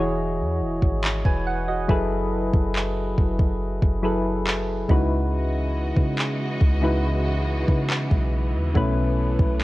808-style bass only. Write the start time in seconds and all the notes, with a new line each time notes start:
Already playing: E1
0.40 E2
0.61 E1
0.82 G#1
1.25 E1
1.89 F#1
2.54 F#1
3.18 F#1
3.83 F#1
4.90 C#2
5.97 C#3
6.61 C#2
7.68 C#3
8.11 B1
8.54 D#2
8.75 B1
9.39 B1